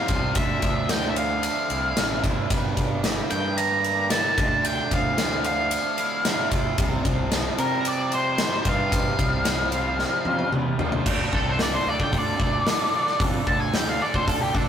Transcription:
Already playing: overdriven electric guitar G3 C4, lead electric guitar F5
0.08 fingered electric bass C2, overdriven electric guitar C3 F3 G3 C4 F4, kick, ride
0.35 fingered electric bass D2, overdriven electric guitar D3 A3 D4 F4, lead electric guitar E5, kick, ride
0.62 fingered electric bass D2, overdriven electric guitar F3, kick, ride
0.89 overdriven electric guitar F3, lead electric guitar G5, snare, ride
1.10 lead electric guitar E5
1.16 overdriven electric guitar A3, lead electric guitar F5, ride
1.43 overdriven electric guitar D4, ride
1.70 fingered electric bass C2, overdriven electric guitar E4, ride
1.96 fingered electric bass A1, overdriven electric guitar A3, snare, ride
2.23 fingered electric bass G1, overdriven electric guitar D3 A3 D4 E4 F4, kick, ride
2.50 fingered electric bass G1, overdriven electric guitar G2 D3 G3 A#3 D4 G4, kick, ride
2.77 fingered electric bass G1, overdriven electric guitar D3, kick, ride
3.04 overdriven electric guitar G3, snare, ride
3.30 fingered electric bass G2, overdriven electric guitar A#3, lead electric guitar G5, ride
3.57 overdriven electric guitar D4, lead electric guitar A#5, ride
3.84 overdriven electric guitar G4, ride
4.10 overdriven electric guitar A#3, lead electric guitar A5, snare, ride
4.38 fingered electric bass D2, overdriven electric guitar D3 A3 D4 F4, kick, ride
4.64 overdriven electric guitar D3, lead electric guitar G5, ride
4.91 fingered electric bass D2, overdriven electric guitar F3, lead electric guitar F5, kick, ride
5.18 overdriven electric guitar F3, snare, ride
5.44 overdriven electric guitar A3, lead electric guitar F5, ride
5.71 overdriven electric guitar D4, ride
5.98 overdriven electric guitar E4, ride
6.25 overdriven electric guitar D3 A3 D4 F4, snare, ride
6.51 fingered electric bass D2, overdriven electric guitar E4, kick, ride
6.78 fingered electric bass C2, overdriven electric guitar C3 F3 G3 C4 F4, kick, ride
7.05 fingered electric bass C2, overdriven electric guitar F3, kick, ride
7.32 overdriven electric guitar F3, snare, ride
7.58 fingered electric bass C3, overdriven electric guitar G3, lead electric guitar A#4, ride
7.85 overdriven electric guitar C4, lead electric guitar D5, ride
8.12 overdriven electric guitar F4, lead electric guitar C5, ride
8.38 overdriven electric guitar G3, snare, ride
8.64 fingered electric bass G2, overdriven electric guitar C3 F3 G3 C4 F4, lead electric guitar F5, kick, ride
8.90 overdriven electric guitar C3 F3 G3 C4 F4, kick, ride
9.19 fingered electric bass C2, overdriven electric guitar F3, kick, ride
9.45 overdriven electric guitar F3, snare, ride
9.72 overdriven electric guitar G3, ride
9.99 overdriven electric guitar C4, snare
10.25 fingered electric bass F2, overdriven electric guitar F4, high tom
10.39 high tom
10.52 fingered electric bass E2, overdriven electric guitar G3, mid tom
10.79 fingered electric bass D2, overdriven electric guitar C3 F3 G3 C4 F4, floor tom
10.92 floor tom
11.05 fingered electric bass D2, overdriven electric guitar D3 D4 F4 A4, kick, crash
11.32 fingered electric bass C2, overdriven electric guitar D3 D4 F4 A4, lead electric guitar A4, kick
11.49 lead electric guitar C5
11.59 overdriven electric guitar D3 D4 F4 A4, lead electric guitar D5, snare, open hi-hat
11.74 lead electric guitar C5
11.86 fingered electric bass D2, overdriven electric guitar D3 D4 F4 A4, lead electric guitar D5
12.00 fingered electric bass D3, lead electric guitar G5, kick
12.12 fingered electric bass D2, overdriven electric guitar D3 D4 F4 A4, kick, open hi-hat
12.18 lead electric guitar D5
12.39 fingered electric bass D2, overdriven electric guitar D3 D4 F4 A4, kick
12.66 overdriven electric guitar D3 D4 F4 A4, snare, open hi-hat
12.94 overdriven electric guitar D3 D4 F4 A4
13.07 snare
13.20 fingered electric bass F2, overdriven electric guitar D3 D4 F4 A4, kick, open hi-hat
13.47 fingered electric bass D2, overdriven electric guitar D3 D4 F4 A4, lead electric guitar A5, kick
13.61 lead electric guitar G#5
13.74 overdriven electric guitar D3 D4 F4 A4, lead electric guitar G5, snare, open hi-hat
13.89 lead electric guitar F5
14.00 overdriven electric guitar D3 D4 F4 A4, lead electric guitar D5
14.14 fingered electric bass D2, lead electric guitar C5, kick
14.27 fingered electric bass D2, overdriven electric guitar D3 D4 F4 A4, lead electric guitar A4, kick, open hi-hat
14.42 lead electric guitar G4
14.54 fingered electric bass A1, overdriven electric guitar D3 D4 F4 A4, lead electric guitar D4, kick

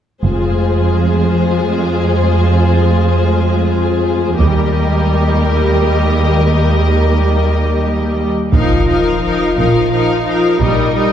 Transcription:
0.23 double bass section F1, cello section F2, viola section G#3 F4, violin section G#4 C5
4.38 cello section D#2, double bass section D#2, viola section G3 G4, violin section A#4 D#5
8.53 double bass section A#1, cello section A#2, viola section F3 D#4, violin section A#4 F5, taiko, impact
8.87 viola section F3 D#4, violin section A#4 F5
9.22 viola section F3 D#4, violin section A#4 F5
9.56 double bass section A#1, cello section A#2, viola section F3 D#4, violin section A#4 F5
9.91 viola section F3 D#4, violin section A#4 F5
10.25 viola section F3 D#4, violin section A#4 F5
10.60 double bass section A#1, cello section A#2, viola section G3 D#4, violin section A#4 D#5
10.94 viola section G3 D#4, violin section A#4 D#5

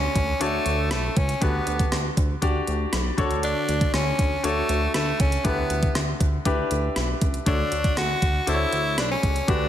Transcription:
Already playing: grand piano D3 D4 F#4 A4 C#5, tenor saxophone C#4
0.16 analog synth bass D2, kick, closed hi-hat
0.40 analog synth bass D2, tenor saxophone A3, grand piano D4 F#4 A4 C#5, closed hi-hat
0.66 analog synth bass D2, closed hi-hat
0.91 analog synth bass B1, tenor saxophone A3, cross-stick, closed hi-hat
1.17 analog synth bass C#2, tenor saxophone C#4, kick, closed hi-hat
1.29 closed hi-hat
1.41 analog synth bass D2, grand piano D3 D4 F#4 G4 B4, tenor saxophone B3, kick, closed hi-hat
1.67 analog synth bass D2, closed hi-hat
1.79 kick, closed hi-hat
1.92 analog synth bass D2, cross-stick, closed hi-hat
2.17 analog synth bass D2, kick, closed hi-hat
2.42 analog synth bass D2, grand piano D4 F#4 G4 D5, kick, closed hi-hat
2.67 analog synth bass D2, closed hi-hat
2.93 analog synth bass B1, cross-stick, closed hi-hat
3.17 analog synth bass D2, grand piano D3 D4 F#4 A4 C#5, kick, closed hi-hat
3.31 closed hi-hat
3.43 tenor saxophone D4, closed hi-hat
3.69 analog synth bass D2, closed hi-hat
3.81 kick, closed hi-hat
3.94 analog synth bass D2, tenor saxophone C#4, cross-stick, closed hi-hat
4.19 analog synth bass D2, kick, closed hi-hat
4.43 analog synth bass D2, tenor saxophone A3, grand piano D4 F#4 A4 C#5, closed hi-hat
4.69 analog synth bass D2, closed hi-hat
4.94 analog synth bass D2, tenor saxophone A3, cross-stick, closed hi-hat
5.20 analog synth bass C#2, tenor saxophone C#4, kick, closed hi-hat
5.32 closed hi-hat
5.44 analog synth bass D2, grand piano D3 D4 E4 G4 B4, tenor saxophone B3, kick, closed hi-hat
5.70 analog synth bass D2, closed hi-hat
5.83 kick, closed hi-hat
5.95 analog synth bass D2, cross-stick, closed hi-hat
6.20 analog synth bass D2, kick, closed hi-hat
6.45 analog synth bass D2, grand piano D4 E4 G4 B4, kick, closed hi-hat
6.71 analog synth bass D2, closed hi-hat
6.96 analog synth bass B1, cross-stick, closed hi-hat
7.21 analog synth bass C#2, kick, closed hi-hat
7.34 closed hi-hat
7.46 analog synth bass D2, grand piano D3 D4 F#4 A4 C#5, tenor saxophone D4, kick, closed hi-hat
7.72 analog synth bass D2, closed hi-hat
7.84 kick, closed hi-hat
7.97 analog synth bass D2, tenor saxophone F#4, cross-stick, closed hi-hat
8.22 analog synth bass D2, kick, closed hi-hat
8.47 analog synth bass D2, grand piano D4 F#4 A4 C5, tenor saxophone E4, closed hi-hat
8.54 grand piano C#5
8.73 analog synth bass D2, closed hi-hat
8.98 analog synth bass B1, tenor saxophone D4, cross-stick, closed hi-hat
9.11 tenor saxophone C#4
9.23 analog synth bass C#2, kick, closed hi-hat
9.36 closed hi-hat
9.48 analog synth bass D2, grand piano D3 D4 F#4 G4 B4, tenor saxophone D4, kick, closed hi-hat

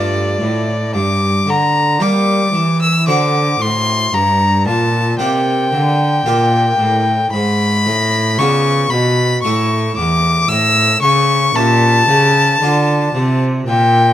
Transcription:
Already playing: harpsichord G2 A3 F4 D5, cello G2, violin D5
0.41 harpsichord A2, cello A2
0.94 harpsichord G2, cello G2, violin D6
1.47 harpsichord D3, cello D3, violin A#5
2.00 harpsichord G3 A#3 G4 D5, cello G3, violin D6
2.53 harpsichord E3, cello E3
2.82 violin E6
3.07 harpsichord D3 C4 F#4 D5, cello D3, violin D6
3.59 harpsichord A2, cello A2, violin C6
4.13 harpsichord G2, cello G2, violin A#5
4.66 harpsichord A#2, cello A#2, violin A5
5.19 harpsichord C3 A#3 G4 D5, cello C3, violin G5
5.72 harpsichord D3, cello D3
6.26 harpsichord A#2 A#3 G4 D5, cello A#2
6.79 cello A2, harpsichord A2
7.32 cello G#2, harpsichord G#2, violin B5
7.86 cello A2, harpsichord A2
8.38 cello C#3, harpsichord C#3 B3 F4 D5, violin C#6
8.90 cello B2, harpsichord B2, violin B5
9.42 harpsichord A2 A3 E4 E5, cello A2, violin C#6
9.97 harpsichord E2, cello E2, violin D6
10.48 harpsichord A2, cello A2, violin E6
11.02 harpsichord C#3, cello C#3, violin C#6
11.55 harpsichord A#2 C#4 G4 E5, cello A#2, violin A5
12.09 cello C#3, harpsichord C#3
12.62 cello D3, harpsichord D3 D4 F4 D5
13.15 harpsichord C3, cello C3
13.67 cello A#2, harpsichord A#2, violin G5

